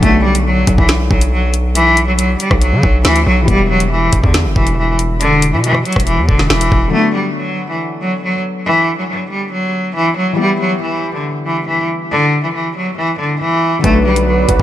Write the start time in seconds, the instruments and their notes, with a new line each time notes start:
Already playing: felt piano D3
0.00 808-style bass B1, felt piano F#3 B3, cello A3, kick, closed hi-hat
0.06 felt piano D4 F#4
0.24 cello G3
0.35 closed hi-hat
0.46 cello F#3
0.67 808-style bass B1, kick, closed hi-hat
0.78 808-style bass B1, cello E3, kick
0.89 snare, closed hi-hat
1.10 808-style bass B1, cello F#3, kick
1.21 closed hi-hat
1.32 cello F#3
1.54 closed hi-hat
1.75 cello E3, closed hi-hat
1.97 closed hi-hat
2.07 cello F#3
2.19 cello F#3, closed hi-hat
2.40 cello G3, closed hi-hat
2.51 808-style bass B1, kick, cross-stick
2.62 cello F#3, closed hi-hat
2.72 808-style bass D3
2.83 808-style bass B1, kick
3.05 808-style bass D2, cello E3, snare
3.16 closed hi-hat
3.26 808-style bass B1, cello F#3
3.42 felt piano E3 G3
3.48 808-style bass E1, cello G3, felt piano B3 E4, kick, closed hi-hat
3.54 felt piano G4
3.70 cello F#3
3.80 closed hi-hat
3.92 cello E3
4.13 808-style bass E1, kick, closed hi-hat
4.23 808-style bass E2, cello D3, kick
4.34 snare, closed hi-hat
4.45 808-style bass F#1
4.56 808-style bass E1, cello E3, kick
4.67 closed hi-hat
4.77 cello E3
4.99 closed hi-hat
5.20 cello D3, closed hi-hat
5.42 closed hi-hat
5.53 808-style bass B2, cello E3
5.64 cello E3, closed hi-hat
5.75 cross-stick
5.85 cello F#3, closed hi-hat
5.93 808-style bass E1, kick, cross-stick, closed hi-hat
6.00 closed hi-hat
6.07 cello E3, closed hi-hat
6.18 808-style bass E2
6.29 808-style bass E1, cello D3, kick
6.39 snare
6.50 808-style bass E1, cello E3, snare
6.61 closed hi-hat
6.72 808-style bass E1, kick
6.88 felt piano D3 F#3
6.93 cello A3, felt piano B3 D4
6.99 felt piano F#4
7.15 cello G3
7.37 cello F#3
7.69 cello E3
8.01 cello F#3
8.23 cello F#3
8.66 cello E3
8.98 cello F#3
9.09 cello F#3
9.30 cello G3
9.52 cello F#3
9.96 cello E3
10.17 cello F#3
10.33 felt piano E3 G3
10.39 cello G3, felt piano B3 E4
10.44 felt piano G4
10.60 cello F#3
10.82 cello E3
11.14 cello D3
11.46 cello E3
11.68 cello E3
12.11 cello D3
12.44 cello E3
12.55 cello E3
12.77 cello F#3
12.98 cello E3
13.19 cello D3
13.41 cello E3
13.79 felt piano D3 F#3
13.84 808-style bass B1, cello A3, felt piano B3 D4, analog synth pad F#4 B4 D5 B5, soft synth lead B4, kick, closed hi-hat
13.90 felt piano F#4
14.06 cello G3
14.16 closed hi-hat
14.27 cello F#3
14.49 808-style bass B1, kick, closed hi-hat